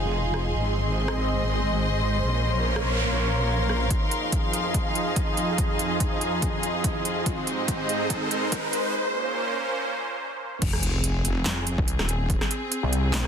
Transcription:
Already playing: F1 F3 D#4 F4 G#4 D#5 F5 C6, downlifter
0.34 cross-stick
0.55 G#1 G#3 C4 C5 D#5
0.86 D#5
1.08 cross-stick
2.23 A#1 A#3 C#4 A#4 C#5, noise sweep
2.45 A#4
2.76 cross-stick
2.99 F5
3.69 cross-stick
3.90 F2 F3 D#4 G#4 D#5, kick, closed hi-hat, riser
4.11 closed hi-hat
4.32 kick, closed hi-hat
4.45 G#4
4.53 closed hi-hat
4.74 kick, closed hi-hat
4.95 closed hi-hat
5.16 kick, closed hi-hat
5.37 closed hi-hat
5.58 kick, closed hi-hat
5.79 closed hi-hat
6.00 kick, closed hi-hat
6.21 closed hi-hat
6.42 kick, closed hi-hat
6.63 closed hi-hat
6.84 kick, closed hi-hat
7.05 closed hi-hat
7.26 G#2 G#3 C4 D#4 C5, kick, closed hi-hat
7.47 D#5, closed hi-hat
7.68 kick, closed hi-hat
7.89 closed hi-hat
8.10 kick, closed hi-hat
8.31 closed hi-hat
8.52 kick, closed hi-hat
8.73 closed hi-hat
8.94 A#2 A#3 C#4 C5
10.62 F1 C4, kick, closed hi-hat, crash, sub drop
10.71 G#4, cross-stick
10.83 closed hi-hat
11.04 closed hi-hat
11.25 closed hi-hat
11.46 F2, snare, clap, closed hi-hat
11.67 closed hi-hat
11.78 C2, kick
11.88 closed hi-hat
11.99 D#1, cross-stick, snare
12.09 closed hi-hat
12.30 kick, closed hi-hat
12.41 cross-stick, snare
12.51 closed hi-hat
12.72 closed hi-hat
12.83 C2
12.93 closed hi-hat
13.14 snare, clap, closed hi-hat

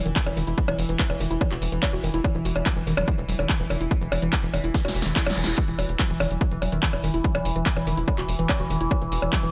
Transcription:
Already playing: E3
0.06 E1 D#3, closed hi-hat
0.16 E3, kick, clap, closed hi-hat
0.26 E1 E3, closed hi-hat, percussion blips
0.37 E1 D#3, open hi-hat
0.47 E1 E4, closed hi-hat
0.58 F#3, kick, closed hi-hat
0.68 E1 E3, closed hi-hat, percussion blips
0.79 E1 E3, open hi-hat
0.89 E1 E3, closed hi-hat
0.99 E3, kick, clap, closed hi-hat
1.10 E1 E3, closed hi-hat, percussion blips
1.20 E1 D#3, open hi-hat
1.31 E1 E4, closed hi-hat
1.41 E3, kick, closed hi-hat, percussion blips
1.51 E1 F#4, clap, closed hi-hat
1.62 E1 E3, open hi-hat
1.72 E1 E3, closed hi-hat
1.83 E3, kick, clap, closed hi-hat, percussion blips
1.93 E1 F#4, closed hi-hat
2.04 E1 D#3, open hi-hat
2.14 E1 E4, closed hi-hat
2.24 E3, kick, closed hi-hat, percussion blips
2.35 E1 E3, closed hi-hat
2.45 E1 F#4, open hi-hat
2.56 E1 E3, closed hi-hat, percussion blips
2.66 F#3, kick, clap, closed hi-hat
2.76 E1 E3, closed hi-hat
2.87 E1 D#3, open hi-hat
2.97 E1 F#3, closed hi-hat, percussion blips
3.08 F#3, kick, closed hi-hat
3.18 E1 E3, closed hi-hat
3.29 E1 F#3, open hi-hat
3.39 E1 D#3, closed hi-hat, percussion blips
3.49 E3, kick, clap, closed hi-hat
3.60 E1 E3, closed hi-hat
3.70 E1 D#3, open hi-hat, percussion blips
3.81 E1 E4, closed hi-hat
3.91 F#3, kick, closed hi-hat
4.01 E1 E3, closed hi-hat
4.12 E1 E3, open hi-hat, percussion blips
4.22 E1 E3, closed hi-hat
4.33 kick, clap, closed hi-hat
4.43 E1 E3, closed hi-hat
4.54 E1 D#3, open hi-hat, percussion blips
4.64 E1 E4, closed hi-hat
4.74 E3, kick, snare, closed hi-hat, reverse cymbal
4.85 E1 F#4, snare, closed hi-hat, percussion blips
4.95 E1 E3, open hi-hat
5.02 E1 D#3, snare, closed hi-hat
5.16 E4, kick, snare, clap, closed hi-hat
5.26 E1 F#3, snare, closed hi-hat, percussion blips
5.37 E1 E3, open hi-hat
5.44 E1 E4, snare, closed hi-hat
5.58 E3, kick, closed hi-hat
5.68 E1 E3, closed hi-hat
5.79 E1 F#4, open hi-hat, percussion blips
5.89 E1 E3, closed hi-hat
5.99 F#3, kick, clap, closed hi-hat
6.10 E1 E3, closed hi-hat
6.20 E1 D#3, open hi-hat, percussion blips
6.31 E1 F#3, closed hi-hat
6.41 F#3, kick, closed hi-hat
6.51 E1 E3, closed hi-hat
6.62 E1 F#3, open hi-hat, percussion blips
6.72 E1 D#3, closed hi-hat
6.83 kick, clap, closed hi-hat
6.93 E1 E3, closed hi-hat, percussion blips
7.04 E1 D#3, open hi-hat
7.14 E1 E4, closed hi-hat
7.24 F#3, kick, closed hi-hat
7.35 E1 E3, closed hi-hat, percussion blips
7.45 E1 E3, open hi-hat
7.56 E1 E3, closed hi-hat
7.66 E3, kick, clap, closed hi-hat
7.77 E1 E3, closed hi-hat, percussion blips
7.87 E1 D#3, open hi-hat
7.97 E1 E4, closed hi-hat
8.08 E3, kick, closed hi-hat, percussion blips
8.18 E1 F#4, clap, closed hi-hat
8.29 E1 E3, open hi-hat
8.39 E1 E3, closed hi-hat
8.49 kick, clap, closed hi-hat, percussion blips
8.60 E1 F#4, closed hi-hat
8.70 E1 D#3, open hi-hat
8.81 E1 E4, closed hi-hat
8.91 E3, kick, closed hi-hat, percussion blips
9.02 E1 E3, closed hi-hat
9.12 E1 F#4, open hi-hat
9.22 E1 E3, closed hi-hat, percussion blips
9.33 F#3, kick, clap, closed hi-hat
9.43 E1 E3, closed hi-hat

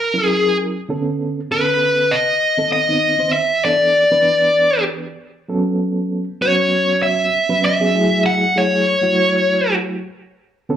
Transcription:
Already playing: A#4
0.14 F#3 C#4 E4 A#4
0.24 G#4
0.89 D3 B3 C#4 A4
1.50 D3 B3 C#4 A4 B4
2.11 D#5
2.57 D#3 B3 C4 A4
2.72 D#5
2.88 D#3 B3 C4 D#4
3.18 D#3 B3 C4 C5
3.33 E5
3.64 E3 B3 D4 A4 D5
4.11 E3 B3 D4 B4
5.48 F#3 B3 C#4 A4
6.41 F#3 B3 C#4 F#4 C#5
7.03 E5
7.49 F#3 B3 C#4 B4
7.65 E5
7.80 F#3 B3 C#4 G#4
7.95 F#3 A3 E4 G#4
8.26 F#5
8.55 F#3 A3 E4 G#4 C#5
9.02 F#3 A3 E4 F#4
10.69 D3 B3 C#4 A4

